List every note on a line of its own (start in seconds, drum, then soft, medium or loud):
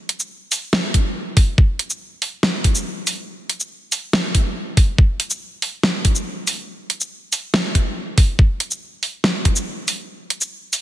0.09 closed hi-hat medium
0.20 shaker medium
0.52 open hi-hat medium
0.52 shaker medium
0.73 snare loud
0.94 kick medium
0.94 closed hi-hat medium
1.37 kick loud
1.37 open hi-hat medium
1.58 kick loud
1.79 closed hi-hat medium
1.90 shaker medium
2.22 open hi-hat medium
2.43 snare loud
2.64 kick medium
2.64 closed hi-hat medium
2.75 shaker medium
3.07 open hi-hat medium
3.07 shaker medium
3.49 closed hi-hat medium
3.60 shaker medium
3.92 open hi-hat medium
3.92 shaker medium
4.13 snare loud
4.35 kick medium
4.35 closed hi-hat medium
4.77 kick loud
4.77 open hi-hat medium
4.98 kick loud
5.20 closed hi-hat medium
5.30 shaker medium
5.62 open hi-hat medium
5.83 snare loud
6.05 kick medium
6.05 closed hi-hat medium
6.15 shaker medium
6.47 open hi-hat medium
6.47 shaker medium
6.90 closed hi-hat medium
7.01 shaker medium
7.33 open hi-hat medium
7.33 shaker medium
7.54 snare loud
7.75 kick medium
7.75 closed hi-hat medium
8.18 kick loud
8.18 open hi-hat medium
8.39 kick loud
8.60 closed hi-hat medium
8.71 shaker medium
9.03 open hi-hat medium
9.24 snare loud
9.45 kick medium
9.45 closed hi-hat medium
9.56 shaker medium
9.88 open hi-hat loud
9.88 shaker medium
10.30 closed hi-hat medium
10.41 shaker medium
10.73 open hi-hat medium
10.73 shaker medium